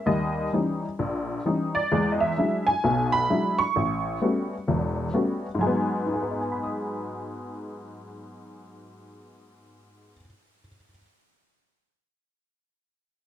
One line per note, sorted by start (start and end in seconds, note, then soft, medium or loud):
0.06 0.46 D#2 medium
0.06 0.46 G3 medium
0.06 0.49 D#5 medium
0.53 0.84 E3 soft
0.53 0.85 G3 soft
0.53 0.85 C#4 soft
0.53 0.85 D#4 soft
0.99 1.39 A#1 medium
1.45 1.77 E3 soft
1.45 1.77 G3 soft
1.45 1.77 C#4 soft
1.45 1.77 D#4 medium
1.75 2.09 D5 medium
1.92 2.31 E2 medium
1.92 2.31 G#3 medium
2.12 2.21 D#5 medium
2.20 2.64 E5 medium
2.38 2.69 F#3 soft
2.38 2.69 G#3 soft
2.38 2.69 D4 soft
2.38 2.69 E4 medium
2.67 3.14 G#5 medium
2.84 3.24 B1 medium
2.84 3.24 B2 medium
3.12 3.60 B5 loud
3.30 3.61 F#3 soft
3.30 3.61 G#3 soft
3.30 3.62 D4 soft
3.30 3.61 E4 medium
3.59 5.09 C#6 medium
3.76 4.16 A1 medium
4.22 4.53 G3 soft
4.22 4.53 A3 soft
4.22 4.53 B3 soft
4.22 4.54 C#4 soft
4.22 4.54 F#4 soft
4.68 5.07 E1 medium
4.68 5.08 E2 medium
5.13 5.45 G3 soft
5.13 5.45 A3 soft
5.13 5.45 B3 soft
5.13 5.45 C#4 soft
5.13 5.46 F#4 soft
5.55 10.13 G#2 medium
5.59 10.17 F#3 medium
5.59 10.21 G#3 medium
5.59 6.39 G#5 medium
5.67 10.25 B3 medium
6.06 10.61 D#4 soft
6.14 10.68 G#4 soft
6.22 10.76 B4 soft
6.31 10.85 D#5 soft
6.41 10.91 G#5 soft
6.52 10.97 B5 soft
6.63 11.02 D#6 soft